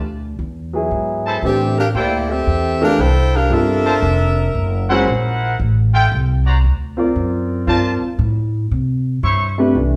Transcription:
Already playing: upright bass D2
0.39 upright bass E2
0.73 grand piano F#3 B3 E4 G#4
0.91 upright bass G#2
1.26 trumpet section E4 A4 C5 A5
1.43 upright bass A2, grand piano E3 A3 D4 G4, saxophone section C4 G4 A4 E5
1.78 saxophone section D4 G4 A#4 F5
1.95 upright bass D2, saxophone section A#3 E4 G4 D5, trumpet section E4 A4 C5 G5
2.29 saxophone section C4 G4 A4 E5
2.47 upright bass E2
2.81 grand piano E3 A3 D4 A4, saxophone section D4 G4 A#4 F5
2.99 upright bass C2, saxophone section E4 A4 C5 G5
3.35 saxophone section D4 G4 A#4 F5
3.50 upright bass G1, grand piano G3 C4 F4 A4, saxophone section D4 A4 A#4 E5
3.85 trumpet section F4 A#4 C5 A5
4.02 upright bass F1
4.55 upright bass F#1
4.89 grand piano G#3 C#4 F#4 C5, trumpet section E4 A#4 C5 F#5
5.07 upright bass A#1
5.59 upright bass A1
5.94 trumpet section F4 A4 E5 G5
6.12 upright bass C2
6.46 trumpet section F#4 C5 D5 A#5
6.64 upright bass D2
6.97 grand piano C4 F4 A#4 D5
7.16 upright bass F#2
7.67 upright bass G2, grand piano C4 F4 A#4 D5, trumpet section F4 A#4 C5 A5
8.02 muted upright bass stroke
8.19 upright bass A2
8.71 upright bass C3
9.23 upright bass G2, trumpet section E4 C5 C#5 C#6
9.58 grand piano C3 A3 D4 G4 B4
9.75 upright bass C2, grand piano E3 A3 D4

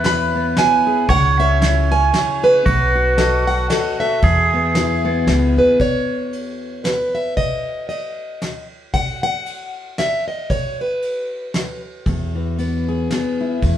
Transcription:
Already playing: upright bass E2, steel-string acoustic guitar E2 B3, pedal steel guitar B4
0.04 steel-string acoustic guitar E4 B5, snare, ride
0.35 steel-string acoustic guitar B3
0.57 steel-string acoustic guitar E4 G#5, snare, ride
0.87 steel-string acoustic guitar G#4
1.09 upright bass C#2, steel-string acoustic guitar C#3 F#5, pedal steel guitar C#5, kick, ride
1.39 steel-string acoustic guitar C#4 E5
1.61 steel-string acoustic guitar E4, snare, ride
1.91 steel-string acoustic guitar C#4 G#5
2.13 steel-string acoustic guitar E4, snare, ride
2.43 steel-string acoustic guitar G#4 B4
2.66 upright bass B1, steel-string acoustic guitar B2, pedal steel guitar F#4, kick, ride
2.95 steel-string acoustic guitar F#4
3.17 steel-string acoustic guitar A4 D#5, snare, ride
3.47 steel-string acoustic guitar F#4 F#5
3.70 steel-string acoustic guitar A4 D#5, snare, ride
4.00 steel-string acoustic guitar A4 E5
4.22 upright bass E2, steel-string acoustic guitar E2, pedal steel guitar G#4, kick, ride
4.54 steel-string acoustic guitar B3
4.75 steel-string acoustic guitar E4, snare, ride
5.05 steel-string acoustic guitar B3
5.27 upright bass C#2, steel-string acoustic guitar E4, snare, ride
5.57 upright bass D#2, steel-string acoustic guitar G#4 B4
5.80 steel-string acoustic guitar C#5, kick, ride
6.33 ride
6.84 steel-string acoustic guitar B4, snare, ride
7.15 steel-string acoustic guitar E5
7.37 steel-string acoustic guitar D#5, kick, ride
7.89 steel-string acoustic guitar D#5, ride
8.42 snare, ride
8.94 steel-string acoustic guitar F#5, kick, ride
9.23 steel-string acoustic guitar F#5
9.46 ride
9.98 steel-string acoustic guitar E5, snare, ride
10.28 steel-string acoustic guitar D#5
10.50 steel-string acoustic guitar C#5, kick, ride
10.81 steel-string acoustic guitar B4
11.02 ride
11.54 snare, ride
12.06 steel-string acoustic guitar E2, upright bass E2, kick, ride
12.35 steel-string acoustic guitar E3
12.59 steel-string acoustic guitar B3, ride
12.88 steel-string acoustic guitar G#4
13.10 steel-string acoustic guitar B3, snare, ride
13.41 steel-string acoustic guitar E4
13.62 steel-string acoustic guitar E2, upright bass E2, kick, ride

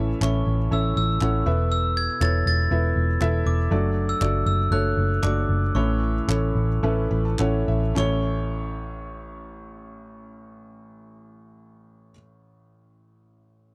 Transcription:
Already playing: picked electric bass A1, felt piano A2 E3 C#4 E4 A4 C#5 E5
0.21 picked electric bass A1, felt piano C#4 E4 A4 C#5 E5, glockenspiel C#6, clap
0.47 picked electric bass A1
0.71 picked electric bass A1, felt piano C#4 E4 A4 C#5 E5, glockenspiel E6
0.97 picked electric bass A1, glockenspiel E6
1.21 picked electric bass A1, felt piano C#4 E4 A4 C#5 F#5, clap
1.46 picked electric bass E1, felt piano B2 B3 E4 A4 B4 E5
1.72 glockenspiel E6
1.97 glockenspiel G#6
2.21 picked electric bass E1, felt piano B3 E4 A4 B4 C#5, glockenspiel A6, clap
2.46 picked electric bass E1, glockenspiel A6
2.71 picked electric bass E1, felt piano B3 E4 A4 B4 E5
2.96 picked electric bass E1
3.21 picked electric bass E1, felt piano B3 E4 A4 B4 E5, clap
3.46 picked electric bass E1, glockenspiel D6
3.71 picked electric bass F#1, felt piano F#3 A3 D4 F#4 A4 D5
4.09 glockenspiel E6
4.21 picked electric bass F#1, felt piano A3 D4 F#4 A4 D5, clap
4.46 picked electric bass F#1, glockenspiel E6
4.71 picked electric bass F#1, felt piano A3 D4 F#4 A4 C#5, glockenspiel F#6
4.97 picked electric bass F#1
5.23 picked electric bass F#1, felt piano A3 D4 F#4 A4 D5, glockenspiel D6, clap
5.49 picked electric bass F#1
5.75 picked electric bass A1, felt piano A2 E3 A3 C#4 E4 A4 C#5, glockenspiel C#6
6.28 picked electric bass A1, felt piano A3 C#4 E4 A4 C#5, clap
6.55 picked electric bass A1
6.83 picked electric bass A1, felt piano A3 C#4 E4 A4 B4
7.11 picked electric bass A1, felt piano B5
7.25 felt piano A5
7.39 picked electric bass A1, felt piano A3 C#4 E4 A4 C#5 F#5, clap
7.68 picked electric bass A1, felt piano E5
7.95 picked electric bass A1, felt piano A1 C#4 E4 A4 C#5, glockenspiel C#6, clap

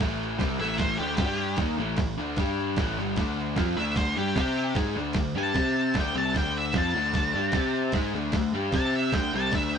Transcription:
0.00 picked electric bass A1, overdriven electric guitar A2 E3 A3, snare
0.39 picked electric bass C2, overdriven electric guitar C3 G3 C4, kick, snare, crash
0.59 picked electric bass A1, overdriven electric guitar A2 E3 A3, lead electric guitar E5
0.77 lead electric guitar C5, kick, snare, crash
0.98 picked electric bass D2, overdriven electric guitar D3 A3 D4, lead electric guitar G4
1.17 picked electric bass G2, overdriven electric guitar G3 D4 G4, lead electric guitar G4, kick, snare, crash
1.57 picked electric bass D#2, overdriven electric guitar D#3 A#3 D#4, kick, snare, crash
1.78 picked electric bass A1, overdriven electric guitar A2 E3 A3
1.97 picked electric bass A1, overdriven electric guitar A2 E3, kick, snare, crash
2.18 picked electric bass D2, overdriven electric guitar D3 A3 D4
2.36 picked electric bass G2, overdriven electric guitar G3 D4 G4, kick, snare, crash
2.76 picked electric bass A1, overdriven electric guitar A2 E3 A3, kick, snare, crash
2.98 picked electric bass G1, overdriven electric guitar G2 D3 G3
3.16 picked electric bass D2, overdriven electric guitar D3 A3 D4, kick, snare, crash
3.56 picked electric bass F2, overdriven electric guitar F3 C4 F4, kick, snare, crash
3.77 picked electric bass D2, overdriven electric guitar D3 A3 D4, lead electric guitar E5
3.96 lead electric guitar C5, kick, snare, crash
4.16 picked electric bass G2, overdriven electric guitar G3 D4 G4, lead electric guitar G4
4.36 picked electric bass C3, overdriven electric guitar C4 G4 C5, lead electric guitar G4, kick, snare, crash
4.75 picked electric bass G#2, overdriven electric guitar G#3 D#4 G#4, kick, snare, crash
4.96 picked electric bass D2, overdriven electric guitar D3 A3 D4
5.13 picked electric bass D2, overdriven electric guitar D3, kick, snare, crash
5.17 overdriven electric guitar A3
5.35 picked electric bass G2, overdriven electric guitar G3 D4 G4, lead electric guitar A5
5.54 picked electric bass C3, overdriven electric guitar C4 G4 C5, kick, snare, crash
5.94 picked electric bass D2, overdriven electric guitar D3 A3 D4, kick, snare, crash
6.00 lead electric guitar G5
6.14 picked electric bass C2, overdriven electric guitar C3 G3 C4, lead electric guitar A5
6.34 picked electric bass D2, overdriven electric guitar D3 A3 D4, lead electric guitar G5, kick, snare, crash
6.58 lead electric guitar E5
6.73 picked electric bass F2, overdriven electric guitar F3 C4 F4, kick, snare, crash
6.78 lead electric guitar A5
6.94 picked electric bass D2, overdriven electric guitar D3 A3 D4
7.14 kick, snare, crash
7.34 picked electric bass G2, overdriven electric guitar G3 D4 G4
7.52 picked electric bass C3, overdriven electric guitar C4 G4 C5, kick, snare, crash
7.92 picked electric bass G#2, overdriven electric guitar G#3 D#4 G#4, kick, snare, crash
8.14 picked electric bass D2, overdriven electric guitar D3 A3 D4
8.32 picked electric bass D2, overdriven electric guitar D3 A3, kick, snare, crash
8.53 picked electric bass G2, overdriven electric guitar G3 D4 G4
8.72 picked electric bass C3, overdriven electric guitar C4 G4 C5, lead electric guitar A5, kick, snare, crash
8.96 lead electric guitar E5
9.12 picked electric bass D2, overdriven electric guitar D3 A3 D4, lead electric guitar G5, kick, snare, crash
9.33 picked electric bass C2, overdriven electric guitar C3 G3 C4, lead electric guitar A5
9.51 picked electric bass D2, overdriven electric guitar D3 A3 D4, lead electric guitar E5, kick, snare, crash
9.75 lead electric guitar G5

